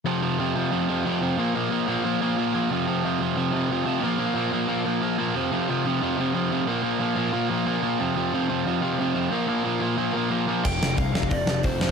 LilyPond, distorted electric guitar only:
\new Staff \with { instrumentName = "Distorted electric guitar" } { \clef bass \time 4/4 \key bes \lydian \tempo 4 = 181 <f, c f>8 <f, c f>8 <f, c f>8 <f, c f>8 <f, c f>8 <f, c f>8 <f, c f>8 <f, c f>8 | <bes, f bes>8 <bes, f bes>8 <bes, f bes>8 <bes, f bes>8 <bes, f bes>8 <bes, f bes>8 <bes, f bes>8 <bes, f bes>8 | <f, c f>8 <f, c f>8 <f, c f>8 <f, c f>8 <f, c f>8 <f, c f>8 <f, c f>8 <f, c f>8 | <bes, f bes>8 <bes, f bes>8 <bes, f bes>8 <bes, f bes>8 <bes, f bes>8 <bes, f bes>8 <bes, f bes>8 <bes, f bes>8 |
<f, c f>8 <f, c f>8 <f, c f>8 <f, c f>8 <f, c f>8 <f, c f>8 <f, c f>8 <f, c f>8 | <bes, f bes>8 <bes, f bes>8 <bes, f bes>8 <bes, f bes>8 <bes, f bes>8 <bes, f bes>8 <bes, f bes>8 <bes, f bes>8 | <f, c f>8 <f, c f>8 <f, c f>8 <f, c f>8 <f, c f>8 <f, c f>8 <f, c f>8 <f, c f>8 | <bes, f bes>8 <bes, f bes>8 <bes, f bes>8 <bes, f bes>8 <bes, f bes>8 <bes, f bes>8 <bes, f bes>8 <bes, f bes>8 |
<f, c f>8 <f, c>8 <f, c>8 <f, c>8 <f, c>8 <f, c>8 <f, c f>8 <f, c f>8 | }